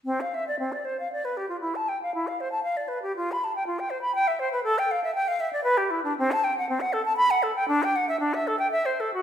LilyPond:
\new Staff \with { instrumentName = "Flute" } { \time 3/4 \key f \lydian \tempo 4 = 117 c'16 f''16 e''16 d''16 c'16 d''16 c''16 f''16 d''16 b'16 g'16 f'16 | e'16 a''16 g''16 f''16 e'16 f''16 c''16 a''16 f''16 d''16 b'16 g'16 | f'16 b''16 a''16 g''16 f'16 g''16 c''16 b''16 g''16 e''16 c''16 b'16 | a'16 g''16 f''16 e''16 g''16 f''16 e''16 d''16 b'16 g'16 e'16 d'16 |
\key a \dorian c'16 a''16 g''16 fis''16 c'16 fis''16 a'16 a''16 b''16 fis''16 a'16 g''16 | d'16 g''16 fis''16 e''16 d'16 e''16 a'16 g''16 e''16 c''16 a'16 fis'16 | }